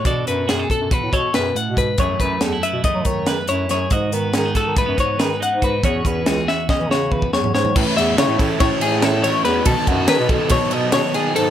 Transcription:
<<
  \new Staff \with { instrumentName = "Clean electric guitar" } { \time 9/8 \key a \lydian \tempo 4. = 94 d''8 b'8 gis'8 a'8 b'8 cis''8 b'8 fis''8 b'8 | cis''8 b'8 a'8 e''8 dis''8 cis''8 b'8 cis''8 cis''8 | dis''8 b'8 gis'8 a'8 b'8 cis''8 b'8 fis''8 b'8 | cis''8 b'8 gis'8 e''8 dis''8 cis''8 b'8 cis''8 cis''8 |
b'8 e''8 cis''8 a'8 cis''8 gis'8 a'8 cis''8 b'8 | a'8 fis'8 b'8 a'8 cis''8 dis''8 cis''8 gis'8 a'8 | }
  \new Staff \with { instrumentName = "Clean electric guitar" } { \time 9/8 \key a \lydian << { <d' fis' a'>8 fis'8 fis'16 a'16 a'8 fis'8 a'2 | <fis a e' gis'>8 a8 cis'16 e'16 b'8 a4 b'8 e'8 gis'8 | fis'8 b8 cis'16 dis'16 fis'8 a16 b16 dis'8 gis'8 dis'8 fis'8 | <e cis' fis' gis'>8 cis'8 fis'8 fis'8 cis'8 fis'2 |
r1 r8 | r1 r8 | } \\ { b,2. b,8 a,8 gis,8 | fis,1 fis,8 | gis,1 gis,8 | e,2. e,8 fis,8 gis,8 |
r1 r8 | r1 r8 | } >> }
  \new Staff \with { instrumentName = "Overdriven electric guitar" } { \time 9/8 \key a \lydian r1 r8 | r1 r8 | r1 r8 | r1 r8 |
<a, e a cis' e'>8 <a cis' e'>8 <e a cis' e'>8 <a, e a cis' e'>8 <e a cis' e'>8 <a cis' e'>8 <a, e a cis' e'>8 <a cis' e'>8 <a, e a cis' e'>8 | <b, dis fis b dis' a'>8 <fis b dis' a'>8 <fis b dis' a'>8 <b, dis fis b dis' a'>8 <fis b dis' a'>8 <fis b dis' a'>8 <b, dis fis b dis' a'>8 <fis b dis' a'>8 <b, dis fis b dis' a'>8 | }
  \new Staff \with { instrumentName = "Bass clarinet" } { \clef bass \time 9/8 \key a \lydian b,8 fis,8 fis,8 r16 fis,16 r16 a,16 b,8 fis,8 r16 b,8. | fis,8 fis,8 e,8 r16 b,16 r16 fis16 dis4 fis,8 fis,8 | gis,8 dis8 dis8 r16 dis16 r16 fis,16 gis,8 dis8 r16 gis,8. | e,8 e,8 cis,8 r8. e16 cis4 e,8 gis,8 |
a,16 r16 e,8 cis16 a,16 a,16 r16 a,16 r16 a,4. e,8 | b,16 r16 fis,8 dis16 b,16 b,16 r16 b,16 r16 b,8. r8. gis,8 | }
  \new DrumStaff \with { instrumentName = "Drums" } \drummode { \time 9/8 <hh bd>8 hh8 <hh sn>8 <hh bd>8 <hh bd>8 <hh bd>8 <hh sn>8 hh8 <hh bd>8 | <hh bd>8 <hh bd>8 <hh sn>8 hh8 <hh bd>8 <hh bd>8 <hh sn>8 hh8 <hh sn>8 | <hh bd>8 hh8 <hh sn>8 <hh bd sn>8 <hh bd>8 <hh bd>8 <hh sn>8 hh8 <hh bd>8 | <hh bd>8 <hh bd>8 <hh sn>8 sn8 <bd sn>8 sn8 bd16 bd16 sn16 tomfh16 sn16 tomfh16 |
<cymc bd>8 <cymr sn>8 <cymr sn>8 <bd cymr sn>8 <bd cymr sn>8 cymr8 <cymr sn>8 <cymr sn>8 <cymr sn>8 | <bd cymr>8 <bd cymr>8 <cymr sn>8 <bd cymr>8 <bd cymr sn>8 cymr8 <cymr sn>8 <cymr sn>8 cymr8 | }
>>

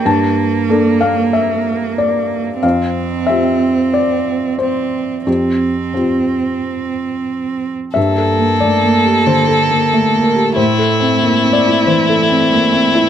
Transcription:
<<
  \new Staff \with { instrumentName = "Violin" } { \time 4/4 \key g \dorian \tempo 4 = 92 r1 | r1 | r1 | a'1 |
e'1 | }
  \new Staff \with { instrumentName = "Felt piano" } { \time 4/4 \key g \dorian << { a''4. f''8 e''4 d''4 | f''4 e''4 d''4 c''4 | g'2. r4 | e''4 d''4 c''4. bes'8 |
c''4. d''8 c''2 | } \\ { g,4 <bes d' a'>2. | f,4 <c' f' g'>2. | f,4 <c' f' g'>2. | \tuplet 3/2 { g,8 a'8 bes8 a8 bes8 g'8 d8 a'8 bes8 a8 bes8 g'8 } |
\tuplet 3/2 { a,8 a'8 c'8 bes8 c'8 e'8 e8 a'8 c'8 bes8 c'8 e'8 } | } >> }
  \new Staff \with { instrumentName = "Cello" } { \time 4/4 \key g \dorian bes1 | c'2. c'4 | c'2.~ c'8 r8 | bes1 |
a1 | }
>>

